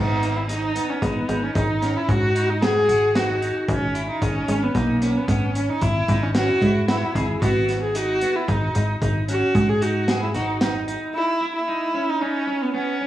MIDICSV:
0, 0, Header, 1, 5, 480
1, 0, Start_track
1, 0, Key_signature, 5, "minor"
1, 0, Tempo, 532860
1, 3320, Time_signature, 7, 2, 24, 8
1, 11773, End_track
2, 0, Start_track
2, 0, Title_t, "Clean electric guitar"
2, 0, Program_c, 0, 27
2, 0, Note_on_c, 0, 59, 70
2, 342, Note_off_c, 0, 59, 0
2, 436, Note_on_c, 0, 63, 67
2, 630, Note_off_c, 0, 63, 0
2, 679, Note_on_c, 0, 59, 59
2, 871, Note_off_c, 0, 59, 0
2, 923, Note_on_c, 0, 63, 64
2, 1114, Note_off_c, 0, 63, 0
2, 1153, Note_on_c, 0, 63, 65
2, 1348, Note_off_c, 0, 63, 0
2, 1398, Note_on_c, 0, 63, 62
2, 1591, Note_off_c, 0, 63, 0
2, 1639, Note_on_c, 0, 61, 55
2, 2024, Note_off_c, 0, 61, 0
2, 2114, Note_on_c, 0, 63, 66
2, 2309, Note_off_c, 0, 63, 0
2, 2356, Note_on_c, 0, 68, 68
2, 2550, Note_off_c, 0, 68, 0
2, 2598, Note_on_c, 0, 66, 65
2, 2791, Note_off_c, 0, 66, 0
2, 2844, Note_on_c, 0, 63, 61
2, 3035, Note_off_c, 0, 63, 0
2, 3078, Note_on_c, 0, 63, 57
2, 3464, Note_off_c, 0, 63, 0
2, 3555, Note_on_c, 0, 64, 62
2, 3749, Note_off_c, 0, 64, 0
2, 3800, Note_on_c, 0, 63, 64
2, 3993, Note_off_c, 0, 63, 0
2, 4040, Note_on_c, 0, 61, 67
2, 4232, Note_off_c, 0, 61, 0
2, 4283, Note_on_c, 0, 63, 71
2, 4475, Note_off_c, 0, 63, 0
2, 4523, Note_on_c, 0, 61, 62
2, 4714, Note_off_c, 0, 61, 0
2, 4765, Note_on_c, 0, 59, 63
2, 4956, Note_off_c, 0, 59, 0
2, 5007, Note_on_c, 0, 61, 59
2, 5197, Note_off_c, 0, 61, 0
2, 5246, Note_on_c, 0, 64, 65
2, 5436, Note_off_c, 0, 64, 0
2, 5485, Note_on_c, 0, 63, 63
2, 5675, Note_off_c, 0, 63, 0
2, 5724, Note_on_c, 0, 61, 62
2, 5915, Note_off_c, 0, 61, 0
2, 5965, Note_on_c, 0, 64, 67
2, 6156, Note_off_c, 0, 64, 0
2, 6202, Note_on_c, 0, 66, 64
2, 6394, Note_off_c, 0, 66, 0
2, 6448, Note_on_c, 0, 68, 65
2, 6638, Note_off_c, 0, 68, 0
2, 6685, Note_on_c, 0, 59, 83
2, 7068, Note_off_c, 0, 59, 0
2, 7166, Note_on_c, 0, 63, 80
2, 7356, Note_off_c, 0, 63, 0
2, 7406, Note_on_c, 0, 59, 70
2, 7596, Note_off_c, 0, 59, 0
2, 7639, Note_on_c, 0, 63, 74
2, 7832, Note_off_c, 0, 63, 0
2, 7879, Note_on_c, 0, 63, 65
2, 8072, Note_off_c, 0, 63, 0
2, 8127, Note_on_c, 0, 63, 66
2, 8316, Note_off_c, 0, 63, 0
2, 8364, Note_on_c, 0, 61, 62
2, 8747, Note_off_c, 0, 61, 0
2, 8842, Note_on_c, 0, 63, 71
2, 9033, Note_off_c, 0, 63, 0
2, 9080, Note_on_c, 0, 68, 62
2, 9272, Note_off_c, 0, 68, 0
2, 9319, Note_on_c, 0, 66, 65
2, 9512, Note_off_c, 0, 66, 0
2, 9563, Note_on_c, 0, 63, 67
2, 9754, Note_off_c, 0, 63, 0
2, 9798, Note_on_c, 0, 63, 63
2, 10184, Note_off_c, 0, 63, 0
2, 10277, Note_on_c, 0, 64, 68
2, 10470, Note_off_c, 0, 64, 0
2, 10521, Note_on_c, 0, 63, 69
2, 10713, Note_off_c, 0, 63, 0
2, 10759, Note_on_c, 0, 61, 60
2, 10952, Note_off_c, 0, 61, 0
2, 11001, Note_on_c, 0, 63, 64
2, 11193, Note_off_c, 0, 63, 0
2, 11235, Note_on_c, 0, 61, 59
2, 11430, Note_off_c, 0, 61, 0
2, 11477, Note_on_c, 0, 59, 67
2, 11670, Note_off_c, 0, 59, 0
2, 11720, Note_on_c, 0, 61, 56
2, 11773, Note_off_c, 0, 61, 0
2, 11773, End_track
3, 0, Start_track
3, 0, Title_t, "Viola"
3, 0, Program_c, 1, 41
3, 0, Note_on_c, 1, 63, 82
3, 328, Note_on_c, 1, 64, 62
3, 341, Note_off_c, 1, 63, 0
3, 435, Note_off_c, 1, 64, 0
3, 441, Note_on_c, 1, 63, 86
3, 802, Note_on_c, 1, 61, 73
3, 816, Note_off_c, 1, 63, 0
3, 921, Note_on_c, 1, 59, 70
3, 934, Note_off_c, 1, 61, 0
3, 1289, Note_on_c, 1, 61, 74
3, 1303, Note_off_c, 1, 59, 0
3, 1397, Note_off_c, 1, 61, 0
3, 1403, Note_on_c, 1, 63, 73
3, 1769, Note_on_c, 1, 64, 70
3, 1783, Note_off_c, 1, 63, 0
3, 1889, Note_on_c, 1, 66, 85
3, 1903, Note_off_c, 1, 64, 0
3, 2246, Note_on_c, 1, 63, 79
3, 2259, Note_off_c, 1, 66, 0
3, 2364, Note_on_c, 1, 68, 107
3, 2378, Note_off_c, 1, 63, 0
3, 2842, Note_on_c, 1, 66, 83
3, 2855, Note_off_c, 1, 68, 0
3, 3201, Note_off_c, 1, 66, 0
3, 3323, Note_on_c, 1, 61, 81
3, 3657, Note_off_c, 1, 61, 0
3, 3686, Note_on_c, 1, 63, 70
3, 3812, Note_on_c, 1, 61, 84
3, 3826, Note_off_c, 1, 63, 0
3, 4170, Note_on_c, 1, 59, 73
3, 4183, Note_off_c, 1, 61, 0
3, 4295, Note_on_c, 1, 58, 67
3, 4308, Note_off_c, 1, 59, 0
3, 4654, Note_on_c, 1, 59, 69
3, 4668, Note_off_c, 1, 58, 0
3, 4767, Note_on_c, 1, 61, 66
3, 4781, Note_off_c, 1, 59, 0
3, 5128, Note_on_c, 1, 63, 77
3, 5141, Note_off_c, 1, 61, 0
3, 5240, Note_on_c, 1, 64, 85
3, 5254, Note_off_c, 1, 63, 0
3, 5610, Note_on_c, 1, 61, 69
3, 5623, Note_off_c, 1, 64, 0
3, 5718, Note_off_c, 1, 61, 0
3, 5723, Note_on_c, 1, 66, 92
3, 6169, Note_off_c, 1, 66, 0
3, 6202, Note_on_c, 1, 64, 70
3, 6536, Note_off_c, 1, 64, 0
3, 6673, Note_on_c, 1, 66, 81
3, 7011, Note_off_c, 1, 66, 0
3, 7053, Note_on_c, 1, 68, 72
3, 7172, Note_on_c, 1, 66, 89
3, 7186, Note_off_c, 1, 68, 0
3, 7529, Note_on_c, 1, 64, 73
3, 7542, Note_off_c, 1, 66, 0
3, 7649, Note_on_c, 1, 63, 71
3, 7663, Note_off_c, 1, 64, 0
3, 8005, Note_off_c, 1, 63, 0
3, 8379, Note_on_c, 1, 66, 86
3, 8727, Note_on_c, 1, 68, 86
3, 8741, Note_off_c, 1, 66, 0
3, 8844, Note_on_c, 1, 66, 79
3, 8857, Note_off_c, 1, 68, 0
3, 9202, Note_off_c, 1, 66, 0
3, 9208, Note_on_c, 1, 64, 60
3, 9313, Note_off_c, 1, 64, 0
3, 9319, Note_on_c, 1, 63, 62
3, 9654, Note_off_c, 1, 63, 0
3, 10042, Note_on_c, 1, 64, 92
3, 10376, Note_off_c, 1, 64, 0
3, 10412, Note_on_c, 1, 64, 81
3, 10893, Note_on_c, 1, 63, 77
3, 10906, Note_off_c, 1, 64, 0
3, 11004, Note_on_c, 1, 61, 82
3, 11018, Note_off_c, 1, 63, 0
3, 11374, Note_on_c, 1, 59, 75
3, 11388, Note_off_c, 1, 61, 0
3, 11479, Note_off_c, 1, 59, 0
3, 11484, Note_on_c, 1, 61, 75
3, 11773, Note_off_c, 1, 61, 0
3, 11773, End_track
4, 0, Start_track
4, 0, Title_t, "Analog synth bass"
4, 0, Program_c, 2, 38
4, 0, Note_on_c, 2, 32, 96
4, 714, Note_off_c, 2, 32, 0
4, 919, Note_on_c, 2, 32, 91
4, 1108, Note_off_c, 2, 32, 0
4, 1162, Note_on_c, 2, 32, 71
4, 1349, Note_off_c, 2, 32, 0
4, 1399, Note_on_c, 2, 32, 86
4, 1776, Note_off_c, 2, 32, 0
4, 1879, Note_on_c, 2, 44, 83
4, 2601, Note_on_c, 2, 32, 96
4, 2614, Note_off_c, 2, 44, 0
4, 3165, Note_off_c, 2, 32, 0
4, 3319, Note_on_c, 2, 32, 106
4, 3696, Note_off_c, 2, 32, 0
4, 3801, Note_on_c, 2, 32, 85
4, 3989, Note_off_c, 2, 32, 0
4, 4040, Note_on_c, 2, 32, 82
4, 4228, Note_off_c, 2, 32, 0
4, 4278, Note_on_c, 2, 35, 83
4, 4655, Note_off_c, 2, 35, 0
4, 4757, Note_on_c, 2, 32, 83
4, 5135, Note_off_c, 2, 32, 0
4, 5239, Note_on_c, 2, 32, 89
4, 5428, Note_off_c, 2, 32, 0
4, 5480, Note_on_c, 2, 32, 95
4, 5857, Note_off_c, 2, 32, 0
4, 5959, Note_on_c, 2, 44, 83
4, 6336, Note_off_c, 2, 44, 0
4, 6443, Note_on_c, 2, 32, 95
4, 6630, Note_off_c, 2, 32, 0
4, 6683, Note_on_c, 2, 32, 95
4, 7435, Note_off_c, 2, 32, 0
4, 7641, Note_on_c, 2, 32, 97
4, 7829, Note_off_c, 2, 32, 0
4, 7884, Note_on_c, 2, 32, 73
4, 8071, Note_off_c, 2, 32, 0
4, 8123, Note_on_c, 2, 32, 77
4, 8498, Note_off_c, 2, 32, 0
4, 8601, Note_on_c, 2, 44, 89
4, 9324, Note_on_c, 2, 32, 94
4, 9338, Note_off_c, 2, 44, 0
4, 9887, Note_off_c, 2, 32, 0
4, 11773, End_track
5, 0, Start_track
5, 0, Title_t, "Drums"
5, 205, Note_on_c, 9, 42, 48
5, 295, Note_off_c, 9, 42, 0
5, 443, Note_on_c, 9, 38, 26
5, 443, Note_on_c, 9, 42, 76
5, 533, Note_off_c, 9, 38, 0
5, 533, Note_off_c, 9, 42, 0
5, 682, Note_on_c, 9, 42, 60
5, 772, Note_off_c, 9, 42, 0
5, 920, Note_on_c, 9, 36, 81
5, 922, Note_on_c, 9, 42, 66
5, 1010, Note_off_c, 9, 36, 0
5, 1012, Note_off_c, 9, 42, 0
5, 1160, Note_on_c, 9, 42, 47
5, 1251, Note_off_c, 9, 42, 0
5, 1398, Note_on_c, 9, 42, 67
5, 1400, Note_on_c, 9, 36, 90
5, 1489, Note_off_c, 9, 42, 0
5, 1490, Note_off_c, 9, 36, 0
5, 1643, Note_on_c, 9, 38, 28
5, 1643, Note_on_c, 9, 42, 44
5, 1733, Note_off_c, 9, 38, 0
5, 1733, Note_off_c, 9, 42, 0
5, 1880, Note_on_c, 9, 36, 85
5, 1880, Note_on_c, 9, 42, 58
5, 1970, Note_off_c, 9, 36, 0
5, 1970, Note_off_c, 9, 42, 0
5, 2123, Note_on_c, 9, 42, 55
5, 2213, Note_off_c, 9, 42, 0
5, 2364, Note_on_c, 9, 38, 96
5, 2364, Note_on_c, 9, 42, 59
5, 2454, Note_off_c, 9, 38, 0
5, 2454, Note_off_c, 9, 42, 0
5, 2604, Note_on_c, 9, 42, 50
5, 2694, Note_off_c, 9, 42, 0
5, 2841, Note_on_c, 9, 38, 88
5, 2841, Note_on_c, 9, 42, 68
5, 2931, Note_off_c, 9, 38, 0
5, 2931, Note_off_c, 9, 42, 0
5, 3083, Note_on_c, 9, 42, 46
5, 3174, Note_off_c, 9, 42, 0
5, 3319, Note_on_c, 9, 36, 97
5, 3319, Note_on_c, 9, 42, 75
5, 3409, Note_off_c, 9, 36, 0
5, 3409, Note_off_c, 9, 42, 0
5, 3558, Note_on_c, 9, 42, 49
5, 3648, Note_off_c, 9, 42, 0
5, 3799, Note_on_c, 9, 36, 99
5, 3799, Note_on_c, 9, 42, 69
5, 3889, Note_off_c, 9, 36, 0
5, 3889, Note_off_c, 9, 42, 0
5, 4039, Note_on_c, 9, 42, 64
5, 4129, Note_off_c, 9, 42, 0
5, 4277, Note_on_c, 9, 38, 27
5, 4277, Note_on_c, 9, 42, 67
5, 4278, Note_on_c, 9, 36, 78
5, 4367, Note_off_c, 9, 38, 0
5, 4367, Note_off_c, 9, 42, 0
5, 4368, Note_off_c, 9, 36, 0
5, 4521, Note_on_c, 9, 38, 27
5, 4521, Note_on_c, 9, 42, 54
5, 4611, Note_off_c, 9, 38, 0
5, 4611, Note_off_c, 9, 42, 0
5, 4759, Note_on_c, 9, 36, 91
5, 4759, Note_on_c, 9, 42, 71
5, 4849, Note_off_c, 9, 36, 0
5, 4849, Note_off_c, 9, 42, 0
5, 5002, Note_on_c, 9, 42, 50
5, 5092, Note_off_c, 9, 42, 0
5, 5237, Note_on_c, 9, 42, 69
5, 5239, Note_on_c, 9, 36, 85
5, 5327, Note_off_c, 9, 42, 0
5, 5329, Note_off_c, 9, 36, 0
5, 5480, Note_on_c, 9, 36, 64
5, 5481, Note_on_c, 9, 42, 57
5, 5571, Note_off_c, 9, 36, 0
5, 5571, Note_off_c, 9, 42, 0
5, 5717, Note_on_c, 9, 38, 97
5, 5717, Note_on_c, 9, 42, 64
5, 5807, Note_off_c, 9, 38, 0
5, 5807, Note_off_c, 9, 42, 0
5, 5961, Note_on_c, 9, 36, 60
5, 5962, Note_on_c, 9, 42, 46
5, 6051, Note_off_c, 9, 36, 0
5, 6052, Note_off_c, 9, 42, 0
5, 6201, Note_on_c, 9, 38, 101
5, 6201, Note_on_c, 9, 42, 76
5, 6291, Note_off_c, 9, 38, 0
5, 6291, Note_off_c, 9, 42, 0
5, 6443, Note_on_c, 9, 36, 58
5, 6446, Note_on_c, 9, 42, 53
5, 6533, Note_off_c, 9, 36, 0
5, 6536, Note_off_c, 9, 42, 0
5, 6683, Note_on_c, 9, 36, 83
5, 6685, Note_on_c, 9, 42, 70
5, 6773, Note_off_c, 9, 36, 0
5, 6775, Note_off_c, 9, 42, 0
5, 6923, Note_on_c, 9, 38, 27
5, 6923, Note_on_c, 9, 42, 50
5, 7014, Note_off_c, 9, 38, 0
5, 7014, Note_off_c, 9, 42, 0
5, 7161, Note_on_c, 9, 42, 74
5, 7251, Note_off_c, 9, 42, 0
5, 7398, Note_on_c, 9, 42, 58
5, 7488, Note_off_c, 9, 42, 0
5, 7642, Note_on_c, 9, 36, 86
5, 7642, Note_on_c, 9, 42, 59
5, 7732, Note_off_c, 9, 36, 0
5, 7732, Note_off_c, 9, 42, 0
5, 7881, Note_on_c, 9, 42, 51
5, 7972, Note_off_c, 9, 42, 0
5, 8122, Note_on_c, 9, 36, 82
5, 8122, Note_on_c, 9, 42, 69
5, 8212, Note_off_c, 9, 36, 0
5, 8212, Note_off_c, 9, 42, 0
5, 8363, Note_on_c, 9, 42, 55
5, 8454, Note_off_c, 9, 42, 0
5, 8602, Note_on_c, 9, 36, 94
5, 8603, Note_on_c, 9, 42, 77
5, 8692, Note_off_c, 9, 36, 0
5, 8693, Note_off_c, 9, 42, 0
5, 8845, Note_on_c, 9, 42, 54
5, 8936, Note_off_c, 9, 42, 0
5, 9080, Note_on_c, 9, 38, 83
5, 9080, Note_on_c, 9, 42, 78
5, 9170, Note_off_c, 9, 38, 0
5, 9170, Note_off_c, 9, 42, 0
5, 9318, Note_on_c, 9, 38, 27
5, 9318, Note_on_c, 9, 42, 50
5, 9408, Note_off_c, 9, 38, 0
5, 9408, Note_off_c, 9, 42, 0
5, 9557, Note_on_c, 9, 38, 94
5, 9557, Note_on_c, 9, 42, 75
5, 9648, Note_off_c, 9, 38, 0
5, 9648, Note_off_c, 9, 42, 0
5, 9801, Note_on_c, 9, 42, 49
5, 9891, Note_off_c, 9, 42, 0
5, 11773, End_track
0, 0, End_of_file